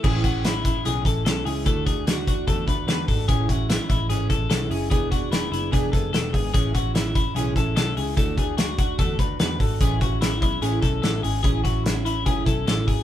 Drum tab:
CC |x-------|--------|--------|--------|
HH |-xxxxxxo|xxxxxxxo|xxxxxxxo|xxxxxxxo|
SD |--o---o-|--o---o-|--o---o-|--o---o-|
BD |oo-o-o--|oo-ooo-o|oo-o-o--|oo--oo-o|

CC |--------|--------|--------|--------|
HH |xxxxxxxo|xxxxxxxo|xxxxxxxo|xxxxxxxo|
SD |--o---o-|--o---o-|--o---o-|--o---o-|
BD |oo-o-o--|oo-ooo-o|oo-o-o--|oo--oo-o|